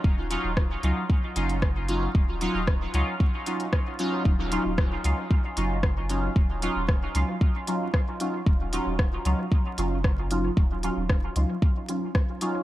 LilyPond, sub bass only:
\new Staff \with { instrumentName = "Sub bass" } { \clef bass \time 4/4 \key ees \minor \tempo 4 = 114 ees,,8 r16 ees,,8 r16 des,16 r8. ges,,4~ ges,,16 r16 | ees,,8 r16 ees,,8 r16 des,16 r2 r16 | ees,,8 r16 ees,,8 r16 des,16 r8. ges,,4~ ges,,16 r16 | ees,,8 r16 ees,,8 r16 des,16 r2 r16 |
ees,,8 r16 ees,,8 r16 des,16 r8. ges,,4~ ges,,16 r16 | ees,,8 r16 ees,,8 r16 des,16 r2 r16 | }